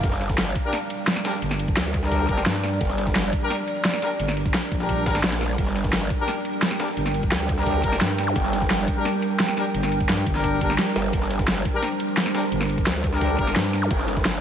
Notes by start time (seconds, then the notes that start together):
0.03 G1 G3 D4 A#4 D5, kick, closed hi-hat, ride
0.12 snare
0.21 snare, closed hi-hat, ride
0.29 kick, snare
0.38 snare, closed hi-hat, ride
0.47 snare
0.55 kick, closed hi-hat, ride
0.64 D4 G4 A#4
0.73 snare, closed hi-hat, ride
0.90 closed hi-hat, ride
0.99 ride
1.07 snare, closed hi-hat, ride
1.16 snare, ride
1.25 D4 G4 A#4, snare, closed hi-hat, ride
1.33 snare
1.42 G1, closed hi-hat, ride
1.51 snare
1.59 closed hi-hat, ride
1.68 kick, ride
1.77 D2, snare, closed hi-hat, ride
1.94 kick, closed hi-hat, ride
2.03 D4 G4 A#4, snare
2.11 kick, closed hi-hat, ride
2.29 G1 D4 G4 A#4, kick, closed hi-hat, ride
2.37 snare
2.46 G2, snare, closed hi-hat, open hi-hat
2.55 snare
2.63 snare, closed hi-hat, ride
2.81 G1, kick, closed hi-hat, ride
2.89 snare
2.98 snare, closed hi-hat, ride
3.07 kick, snare
3.15 snare, closed hi-hat, ride
3.24 snare
3.33 kick, closed hi-hat, ride
3.42 D4 G4 A#4
3.50 snare, closed hi-hat, ride
3.68 closed hi-hat, ride
3.76 ride
3.85 snare, closed hi-hat, ride
3.94 snare, ride
4.02 D4 G4 A#4, snare, closed hi-hat, ride
4.11 ride
4.20 G1, closed hi-hat, ride
4.28 snare
4.37 closed hi-hat, ride
4.46 kick, ride
4.54 snare, closed hi-hat, ride
4.72 A#1, kick, closed hi-hat, ride
4.80 D4 G4 A#4, snare
4.89 kick, closed hi-hat, ride
5.06 D4 G4 A#4, kick, snare, closed hi-hat, ride
5.15 snare, ride
5.24 A#1, snare, closed hi-hat, ride
5.32 snare, ride
5.41 snare, closed hi-hat, ride
5.58 G1 G5, kick, closed hi-hat, ride
5.67 snare
5.76 snare, closed hi-hat, ride
5.84 kick, snare
5.93 snare, closed hi-hat, ride
6.02 snare
6.10 kick, closed hi-hat, ride
6.19 D4 G4 A#4
6.28 snare, closed hi-hat, ride
6.45 closed hi-hat, ride
6.54 ride
6.62 snare, closed hi-hat, ride
6.71 snare, ride
6.80 D4 G4 A#4, snare, closed hi-hat, ride
6.88 snare
6.97 G1, closed hi-hat, ride
7.06 snare
7.14 closed hi-hat, ride
7.23 kick, ride
7.32 D2, snare, closed hi-hat, ride
7.49 kick, closed hi-hat, ride
7.58 D4 G4 A#4, snare
7.66 kick, closed hi-hat, ride
7.84 G1 D4 G4 A#4, kick, closed hi-hat, ride
7.92 snare
8.01 G2, snare, closed hi-hat, open hi-hat
8.10 snare
8.18 snare, closed hi-hat, ride
8.27 zap
8.36 G1, kick, closed hi-hat, ride
8.44 snare
8.53 snare, closed hi-hat, ride
8.62 kick, snare
8.70 snare, closed hi-hat, ride
8.79 snare
8.88 kick, closed hi-hat, ride
8.96 D4 G4 A#4
9.05 snare, closed hi-hat, ride
9.22 closed hi-hat, ride
9.31 ride
9.40 snare, closed hi-hat, ride
9.48 snare, ride
9.57 D4 G4 A#4, snare, closed hi-hat, ride
9.66 ride
9.74 G1, closed hi-hat, ride
9.83 snare
9.92 closed hi-hat, ride
10.00 kick, ride
10.09 G2, snare, closed hi-hat, ride
10.26 G1, kick, closed hi-hat, ride
10.35 D4 G4 A#4, snare
10.44 kick, closed hi-hat, ride, swell
10.61 G1 D4 G4 A#4, kick, closed hi-hat, ride
10.70 snare
10.79 snare, closed hi-hat
10.96 G1, snare, closed hi-hat, ride
11.13 G1 C5, kick, closed hi-hat, ride
11.22 snare
11.31 snare, closed hi-hat, ride
11.39 kick, snare
11.48 snare, closed hi-hat, ride
11.57 snare
11.65 kick, closed hi-hat, ride
11.74 D4 G4 A#4
11.83 snare, closed hi-hat, ride
12.00 closed hi-hat, ride
12.09 ride
12.17 snare, closed hi-hat, ride
12.26 snare, ride
12.35 D4 G4 A#4, snare, closed hi-hat, ride
12.43 snare
12.52 G1, closed hi-hat, ride
12.61 snare
12.69 closed hi-hat, ride
12.78 kick, ride
12.87 D2, snare, closed hi-hat, ride
13.04 kick, closed hi-hat, ride
13.13 D4 G4 A#4, snare
13.21 kick, closed hi-hat, ride
13.39 G1 D4 G4 A#4, kick, closed hi-hat, ride
13.47 snare
13.56 G2, snare, closed hi-hat, open hi-hat
13.65 snare
13.73 snare, closed hi-hat, ride
13.82 zap
13.91 G1 F5, kick, closed hi-hat, ride
13.99 snare
14.08 snare, closed hi-hat, ride
14.17 kick, snare
14.25 snare, closed hi-hat, ride
14.34 snare